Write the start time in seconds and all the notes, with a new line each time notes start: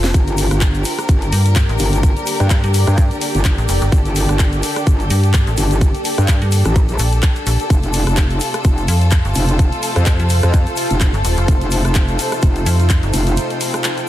Already playing: F1 C3 A3 F4 A4 C5 A5
0.04 snare, closed hi-hat, shaker
0.14 G1 D3 A#3 G4 A#4, kick, closed hi-hat, ride, shaker
0.27 closed hi-hat, shaker
0.38 open hi-hat, ride, shaker
0.49 G1 D5, cross-stick, closed hi-hat, shaker
0.61 kick, clap, closed hi-hat, ride, shaker
0.74 closed hi-hat, shaker
0.85 open hi-hat, ride, shaker
0.99 cross-stick, closed hi-hat, shaker
1.09 G1, kick, closed hi-hat, ride, shaker
1.22 closed hi-hat, shaker
1.32 G2, open hi-hat, ride, shaker
1.45 closed hi-hat, shaker
1.56 kick, clap, closed hi-hat, ride, shaker
1.69 A1, closed hi-hat, shaker
1.79 G1, open hi-hat, ride, shaker
1.93 closed hi-hat, shaker
2.03 kick, closed hi-hat, ride, shaker
2.17 closed hi-hat, shaker
2.27 open hi-hat, ride, shaker
2.40 G2, cross-stick, closed hi-hat, shaker
2.50 kick, clap, closed hi-hat, ride, shaker
2.64 G2, closed hi-hat, shaker
2.74 open hi-hat, ride, shaker
2.87 G2, cross-stick, closed hi-hat, shaker
2.98 kick, closed hi-hat, ride, shaker
3.11 closed hi-hat, shaker
3.21 open hi-hat, ride, shaker
3.35 G1, closed hi-hat, shaker
3.45 kick, clap, closed hi-hat, ride, shaker
3.58 A1, closed hi-hat, shaker
3.69 F1, open hi-hat, ride, shaker
3.82 G1, closed hi-hat, shaker
3.92 G1 A4, kick, closed hi-hat, ride, shaker
4.05 closed hi-hat, shaker
4.16 open hi-hat, ride, shaker
4.29 G1, cross-stick, closed hi-hat, shaker
4.39 kick, clap, closed hi-hat, ride, shaker
4.53 closed hi-hat, shaker
4.63 open hi-hat, ride, shaker
4.76 cross-stick, closed hi-hat, shaker
4.87 G1, kick, closed hi-hat, ride, shaker
5.00 closed hi-hat, shaker
5.10 G2, open hi-hat, ride, shaker
5.24 closed hi-hat, shaker
5.34 kick, clap, closed hi-hat, ride, shaker
5.47 A1, closed hi-hat, shaker
5.57 G1, open hi-hat, ride, shaker
5.71 closed hi-hat, shaker
5.81 kick, closed hi-hat, ride, shaker
5.95 closed hi-hat, shaker
6.05 open hi-hat, ride, shaker
6.18 G2, cross-stick, closed hi-hat, shaker
6.28 kick, clap, closed hi-hat, ride, shaker
6.41 G2, closed hi-hat, shaker
6.52 open hi-hat, ride, shaker
6.65 A1, cross-stick, closed hi-hat, shaker
6.76 kick, closed hi-hat, ride, shaker
6.88 A#1, closed hi-hat, shaker
6.99 A#1, open hi-hat, ride, shaker
7.12 closed hi-hat, shaker
7.23 kick, clap, closed hi-hat, ride, shaker
7.35 closed hi-hat, shaker
7.47 A#1, open hi-hat, ride, shaker
7.60 closed hi-hat, shaker
7.70 F1 C3 A3 F4, kick, closed hi-hat, ride, shaker
7.83 C5, closed hi-hat, shaker
7.93 open hi-hat, ride, shaker
8.07 F1 A5, cross-stick, closed hi-hat, shaker
8.17 kick, clap, closed hi-hat, ride, shaker
8.30 closed hi-hat, shaker
8.40 open hi-hat, ride, shaker
8.53 cross-stick, closed hi-hat, shaker
8.64 F1, kick, closed hi-hat, ride, shaker
8.78 closed hi-hat, shaker
8.88 F2, open hi-hat, ride, shaker
9.01 closed hi-hat, shaker
9.11 kick, clap, closed hi-hat, ride, shaker
9.25 G1, closed hi-hat, shaker
9.35 F1, open hi-hat, ride, shaker
9.48 closed hi-hat, shaker
9.59 kick, closed hi-hat, ride, shaker
9.72 closed hi-hat, shaker
9.83 open hi-hat, ride, shaker
9.96 F2, cross-stick, closed hi-hat, shaker
10.06 kick, clap, closed hi-hat, ride, shaker
10.20 F2, closed hi-hat, shaker
10.30 open hi-hat, ride, shaker
10.43 F2, cross-stick, closed hi-hat, shaker
10.54 kick, closed hi-hat, ride, shaker
10.66 closed hi-hat, shaker
10.76 open hi-hat, ride, shaker
10.90 F1, closed hi-hat, shaker
11.01 kick, clap, closed hi-hat, ride, shaker
11.14 G1, closed hi-hat, shaker
11.25 D#1, open hi-hat, ride, shaker
11.37 F1, closed hi-hat, shaker
11.48 F1 D#4, kick, closed hi-hat, ride, shaker
11.61 closed hi-hat, shaker
11.71 open hi-hat, ride, shaker
11.85 F1, cross-stick, closed hi-hat, shaker
11.95 kick, clap, closed hi-hat, ride, shaker
12.08 closed hi-hat, shaker
12.19 open hi-hat, ride, shaker
12.32 cross-stick, closed hi-hat, shaker
12.42 F1 G5, kick, closed hi-hat, ride, shaker
12.56 closed hi-hat, shaker
12.66 F2, open hi-hat, ride, shaker
12.80 closed hi-hat, shaker
12.90 kick, clap, closed hi-hat, ride, shaker
13.03 G1, closed hi-hat, shaker
13.14 F1, open hi-hat, ride, shaker
13.27 closed hi-hat, shaker
13.37 closed hi-hat, ride, shaker
13.50 closed hi-hat, shaker
13.61 open hi-hat, ride, shaker
13.74 cross-stick, closed hi-hat, shaker
13.84 clap, closed hi-hat, ride, shaker
13.98 closed hi-hat, shaker